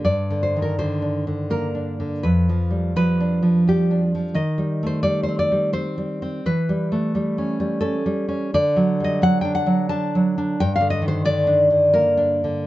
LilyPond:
\new Staff \with { instrumentName = "Nylon-string guitar" } { \time 3/4 \key g \minor \tempo 4 = 86 << { d''8 c''16 bes'16 c''4 bes'4 | b'4 b'4 g'8 r8 | ees''8. c''16 d''16 c''16 d''8 c''4 | b'2 a'4 |
d''8. ees''16 fis''16 g''16 fis''8 a''4 | g''16 f''16 ees''16 c''16 d''4 bes'4 | } \\ { \tuplet 3/2 { g,8 d8 ees8 d8 d'8 d8 bes8 d'8 d8 } | \tuplet 3/2 { f,8 f8 g8 f8 d'8 f8 g8 d'8 f8 } | \tuplet 3/2 { ees8 g8 a8 g8 c'8 g8 c'8 g8 c'8 } | \tuplet 3/2 { e8 g8 a8 g8 cis'8 g8 cis'8 g8 cis'8 } |
\tuplet 3/2 { d8 fis8 g8 fis8 d'8 fis8 d'8 fis8 d'8 } | \tuplet 3/2 { g,8 d8 ees8 d8 d'8 d8 bes8 d'8 d8 } | } >> }